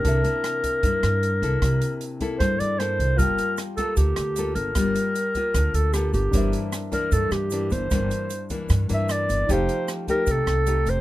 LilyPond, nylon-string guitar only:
\new Staff \with { instrumentName = "Nylon-string guitar" } { \time 4/4 \key c \dorian \tempo 4 = 153 << { <bes e' a'>8 <bes e'>4. <bes e'>4. <bes e' a'>8 | <bes e'>4. <bes e' a'>4. <bes e' a'>4 | <bes f'>4 r8 <bes f' a'>4. <bes f' a'>4 | <bes f'>4 r8 <bes f'>4. <bes f' a'>4 |
<e bes d'>4 r8 <e bes d'>4. <e bes d'>4 | <e bes d'>4 r8 <e bes d'>4 <e bes d'>4. | <a ees' g'>4. <a ees' g'>4. <a ees' g'>4 | } \\ { c2 g,2 | c2 g,2 | g2 d2 | g2 d2 |
g,2 g,2 | g,2 g,2 | f2 c2 | } >> }